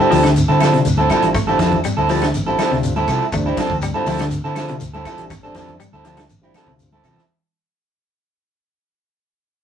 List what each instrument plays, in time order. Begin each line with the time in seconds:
0.00 transistor combo organ D3 G3 C4 G4, clean electric guitar A4, shekere
0.10 fingered electric bass D2, clean electric guitar F3 C4 E4 A4, open hi-hat, shekere
0.24 clean electric guitar D3, snare, closed hi-hat, claves, shekere
0.36 closed hi-hat, shekere
0.48 fingered electric bass D3, clean electric guitar C4 E4 A4, high conga, shekere
0.60 transistor combo organ D3 G3 C4 F4, clean electric guitar F3 C4 E4 A4, snare, closed hi-hat, high conga, claves, shekere
0.73 clean electric guitar C3, snare, closed hi-hat, shekere
0.85 fingered electric bass D2, closed hi-hat, shekere
0.97 clean electric guitar C4 E4 A4, high conga, shekere
1.10 transistor combo organ D3 G3 C4 E4, clean electric guitar F3 C4 E4 A4, kick, closed hi-hat, high conga, claves, shekere
1.22 fingered electric bass A1, transistor combo organ D3 G3 C4 F4, closed hi-hat, shekere
1.34 clean electric guitar A3, kick, snare, closed hi-hat, low conga, claves, shekere
1.47 transistor combo organ D3 G3 C4 F4, clean electric guitar C4 E4 A4, shekere
1.59 fingered electric bass F2, clean electric guitar F3 C4 E4 A4, kick, snare, closed hi-hat, high conga, shekere
1.72 kick, low conga
1.84 clean electric guitar G3, closed hi-hat, claves, shekere
1.97 fingered electric bass D2, clean electric guitar C4 E4 A4, shekere
2.09 transistor combo organ D3 G3 C4 G4, clean electric guitar F3 C4 E4 A4, open hi-hat, shekere
2.22 clean electric guitar D3, snare, closed hi-hat, low conga, claves, shekere
2.34 fingered electric bass A1, closed hi-hat, shekere
2.46 transistor combo organ D3 G3 C4 F4, clean electric guitar C4 E4 A4, high conga, shekere
2.59 clean electric guitar F3 C4 E4 A4, snare, closed hi-hat, high conga, claves, shekere
2.71 fingered electric bass D2, clean electric guitar C3, snare, shekere
2.83 closed hi-hat, shekere
2.96 clean electric guitar C4 E4 A4, high conga, shekere
3.08 fingered electric bass C3, clean electric guitar F3 C4 E4 A4, kick, closed hi-hat, high conga, claves, shekere
3.21 shekere
3.32 fingered electric bass D2, transistor combo organ D3 G3 C4 D4, clean electric guitar A3, kick, closed hi-hat, low conga, claves, shekere
3.46 clean electric guitar C4 E4, muted clean electric guitar stroke, shekere
3.57 clean electric guitar F3 C4 A4, muted fingered electric bass stroke, kick, snare, closed hi-hat, high conga, shekere
3.70 fingered electric bass D2, kick, low conga, shekere
3.82 clean electric guitar G3, closed hi-hat, claves, shekere
3.94 transistor combo organ D3 G3 C4 F4, clean electric guitar C4 E4 A4, shekere
4.06 fingered electric bass D2, clean electric guitar F3 C4 E4 A4, open hi-hat, shekere
4.19 clean electric guitar D3, snare, closed hi-hat, claves, shekere
4.30 closed hi-hat, shekere
4.44 fingered electric bass D3, clean electric guitar C4 E4 A4, shekere
4.56 transistor combo organ D3 G3 C4 F4, clean electric guitar F3 C4 E4 A4, snare, closed hi-hat, high conga, claves, shekere
4.68 clean electric guitar C3, closed hi-hat, shekere
4.80 fingered electric bass D2, closed hi-hat, shekere
4.94 clean electric guitar C4 E4 A4, high conga, shekere
5.05 transistor combo organ D3 G3 C4 F4, clean electric guitar F3 C4 E4 A4, kick, closed hi-hat, high conga, claves, shekere
5.18 fingered electric bass A1, transistor combo organ D3 G3 C4 G4, closed hi-hat, shekere
5.30 muted clean electric guitar stroke, kick, snare, closed hi-hat, low conga, claves, shekere
5.42 transistor combo organ D3 G3 C4 D4, clean electric guitar C4 A4, muted clean electric guitar stroke, shekere
5.54 fingered electric bass F2, clean electric guitar F3 C4 E4 A4, kick, snare, closed hi-hat, high conga, shekere
5.68 high conga, low conga, shekere
5.80 clean electric guitar G3, closed hi-hat, claves, shekere
5.93 fingered electric bass D2, clean electric guitar C4 E4 A4, shekere
6.04 transistor combo organ D3 G3 C4 F4, clean electric guitar F3 C4 E4 A4, snare, closed hi-hat, shekere
6.17 clean electric guitar D3, snare, closed hi-hat, claves, shekere
6.29 fingered electric bass A1, closed hi-hat, shekere
6.42 transistor combo organ D3 G3 C4 F4, clean electric guitar C4 E4, shekere
6.54 clean electric guitar F3 C4 E4 A4, snare, closed hi-hat, high conga, claves, shekere
6.67 fingered electric bass D2, clean electric guitar C3, kick
6.79 closed hi-hat, shekere
6.92 clean electric guitar C4 E4 A4, high conga, shekere
7.00 high conga
7.04 fingered electric bass C3, clean electric guitar F3 C4 E4 A4, kick, closed hi-hat, claves, shekere
7.08 low conga
7.16 snare, low conga, shekere